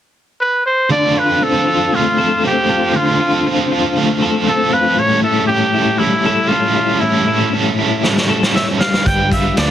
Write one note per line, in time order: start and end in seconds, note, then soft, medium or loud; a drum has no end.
0.41 0.64 B4 medium
0.66 0.89 C5 medium
0.90 1.15 D3 medium
0.90 1.16 A3 medium
0.90 1.16 C4 medium
0.90 1.16 F4 medium
0.90 1.14 A4 medium
0.90 1.20 D5 loud
1.15 1.42 C4 soft
1.15 1.42 F4 soft
1.15 1.41 A4 soft
1.15 1.44 B4 medium
1.41 1.67 A3 soft
1.41 1.67 C4 medium
1.41 1.66 F4 medium
1.41 1.96 A4 medium
1.41 1.64 A4 medium
1.65 1.91 C4 soft
1.65 1.92 F4 soft
1.65 1.91 A4 soft
1.92 2.18 D3 medium
1.92 2.18 A3 medium
1.92 2.18 C4 medium
1.92 2.18 F4 medium
1.92 2.44 F4 medium
1.92 2.16 A4 medium
2.17 2.44 C4 soft
2.17 2.44 F4 soft
2.17 2.43 A4 soft
2.44 2.69 A3 medium
2.44 2.69 C4 medium
2.44 2.69 F4 medium
2.44 2.97 G4 medium
2.44 2.68 A4 medium
2.69 2.93 C4 soft
2.69 2.93 F4 soft
2.69 2.94 A4 soft
2.93 3.19 D3 medium
2.93 3.19 A3 medium
2.93 3.19 C4 medium
2.93 3.20 F4 medium
2.93 3.46 F4 medium
2.93 3.19 A4 medium
3.20 3.45 C4 soft
3.20 3.46 F4 soft
3.20 3.45 A4 soft
3.45 3.71 A3 medium
3.45 3.71 C4 medium
3.45 3.71 F4 medium
3.45 3.70 A4 medium
3.71 3.96 C4 soft
3.71 3.95 F4 soft
3.71 3.96 A4 medium
3.96 4.21 D3 medium
3.96 4.22 A3 medium
3.96 4.22 C4 medium
3.96 4.22 F4 loud
3.96 4.21 A4 medium
4.22 4.46 C4 soft
4.22 4.47 F4 medium
4.22 4.47 A4 medium
4.47 4.72 A3 medium
4.47 4.73 C4 medium
4.47 4.72 F4 medium
4.47 4.75 A4 medium
4.47 4.70 A4 medium
4.72 4.98 C4 soft
4.72 4.98 F4 soft
4.72 4.98 A4 soft
4.72 5.01 B4 medium
4.97 5.23 A2 medium
4.97 5.24 E3 medium
4.97 5.24 G3 medium
4.97 5.23 C#4 medium
4.97 5.23 E4 medium
4.97 5.22 A4 medium
4.97 5.23 C#5 loud
5.23 5.47 G3 soft
5.23 5.48 C#4 soft
5.23 5.48 E4 soft
5.23 5.49 A4 soft
5.23 5.47 A4 medium
5.47 5.74 G3 medium
5.47 5.75 C#4 medium
5.47 5.74 E4 medium
5.47 6.00 G4 medium
5.47 5.73 A4 medium
5.74 5.99 G3 soft
5.74 5.99 C#4 soft
5.74 5.99 E4 soft
5.74 6.00 A4 soft
5.98 6.25 A2 medium
5.98 6.25 E3 medium
5.98 6.26 G3 medium
5.98 6.26 C#4 medium
5.98 6.50 E4 medium
5.98 6.25 E4 medium
5.98 6.24 A4 medium
6.25 6.49 G3 soft
6.25 6.51 C#4 soft
6.25 6.51 E4 soft
6.25 6.51 A4 soft
6.48 6.76 G3 medium
6.48 6.76 C#4 medium
6.48 7.02 F4 medium
6.52 6.76 E4 medium
6.52 6.75 A4 medium
6.76 7.00 G3 soft
6.76 7.01 C#4 soft
6.76 7.01 E4 soft
6.76 7.01 A4 soft
7.00 7.27 A2 medium
7.00 7.27 E3 medium
7.00 7.27 G3 medium
7.00 7.28 C#4 medium
7.00 7.52 E4 medium
7.00 7.27 E4 medium
7.00 7.26 A4 medium
7.27 7.51 G3 soft
7.27 7.52 C#4 soft
7.27 7.53 E4 soft
7.27 7.53 A4 soft
7.53 7.78 G3 medium
7.53 7.78 C#4 medium
7.53 7.77 E4 medium
7.53 7.76 A4 medium
7.77 8.02 G3 soft
7.77 8.03 C#4 soft
7.77 8.03 E4 medium
7.77 8.03 A4 medium
8.02 8.29 A2 medium
8.02 8.29 E3 medium
8.02 8.29 G3 medium
8.02 8.29 C#4 medium
8.02 8.28 E4 medium
8.02 8.27 A4 medium
8.02 snare soft
8.17 snare soft
8.28 8.52 G3 soft
8.28 8.53 C#4 soft
8.28 8.53 E4 medium
8.28 8.54 A4 medium
8.43 snare medium
8.53 8.79 G3 medium
8.53 8.80 C#4 medium
8.53 8.79 E4 medium
8.53 8.78 A4 medium
8.53 8.67 E5 medium
8.53 snare medium
8.78 9.06 G3 medium
8.78 9.03 D4 soft
8.78 9.03 F4 soft
8.78 9.04 B4 medium
8.78 9.08 F5 medium
8.78 snare medium
8.94 snare medium
9.02 9.50 G1 medium
9.02 9.30 G3 medium
9.02 9.31 D4 medium
9.02 9.30 F4 medium
9.02 9.28 B4 medium
9.02 kick medium
9.02 closed hi-hat medium
9.06 9.71 G3 medium
9.06 9.32 G5 loud
9.29 9.55 D4 soft
9.29 9.56 F4 soft
9.29 9.56 B4 soft
9.29 9.56 E5 medium
9.29 kick medium
9.29 closed hi-hat medium
9.55 9.71 D2 medium
9.55 9.71 G3 medium
9.55 9.71 D4 medium
9.55 9.71 F4 medium
9.55 9.71 B4 medium
9.55 9.71 D5 medium
9.55 snare loud
9.55 closed hi-hat medium